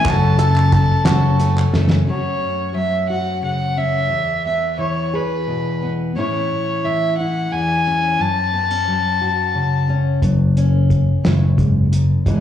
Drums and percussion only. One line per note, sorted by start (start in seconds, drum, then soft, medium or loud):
0.05 kick loud
0.05 clap medium
0.05 closed hi-hat medium
0.39 closed hi-hat medium
0.56 clap medium
0.72 kick medium
0.72 clap soft
0.72 closed hi-hat medium
1.05 snare medium
1.05 clap medium
1.05 closed hi-hat medium
1.40 closed hi-hat medium
1.58 clap medium
1.74 snare medium
1.74 clap soft
1.90 snare medium
10.22 kick soft
10.22 closed hi-hat medium
10.57 closed hi-hat soft
10.90 kick soft
10.90 closed hi-hat soft
11.25 snare medium
11.25 closed hi-hat medium
11.58 kick soft
11.58 closed hi-hat soft
11.93 closed hi-hat medium
12.26 kick medium
12.26 closed hi-hat medium